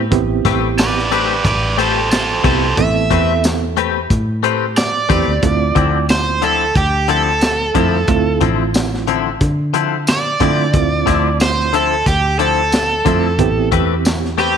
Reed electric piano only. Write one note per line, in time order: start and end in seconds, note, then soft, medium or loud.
0.11 1.08 B3 medium
0.11 1.08 C4 medium
0.11 1.08 E4 medium
0.11 1.08 G4 loud
2.44 2.69 B3 medium
2.44 2.69 C4 medium
2.44 2.69 E4 medium
2.44 2.69 G4 medium
2.77 3.74 B3 medium
2.77 3.74 C4 medium
2.77 3.74 E4 medium
2.77 3.74 A4 medium
5.09 5.34 B3 medium
5.09 5.34 C4 medium
5.09 5.34 E4 medium
5.09 5.35 G4 medium
5.42 6.39 A3 medium
5.42 6.39 C4 medium
5.42 6.39 E4 medium
5.42 6.39 F4 medium
7.75 8.00 A3 medium
7.75 8.00 C4 medium
7.75 8.00 E4 medium
7.75 8.00 F4 medium
8.08 9.04 A3 medium
8.08 9.04 C4 medium
8.08 9.04 E4 medium
8.08 9.05 F4 loud
10.41 10.65 A3 medium
10.41 10.65 C4 medium
10.41 10.66 E4 medium
10.41 10.66 F4 medium
10.74 11.70 A3 medium
10.74 11.70 C4 medium
10.74 11.70 E4 medium
10.74 11.70 F4 medium
13.06 13.31 A3 medium
13.06 13.31 C4 medium
13.06 13.31 E4 medium
13.06 13.31 F4 medium
13.39 14.35 B3 medium
13.39 14.35 C4 medium
13.39 14.35 E4 medium
13.39 14.36 G4 loud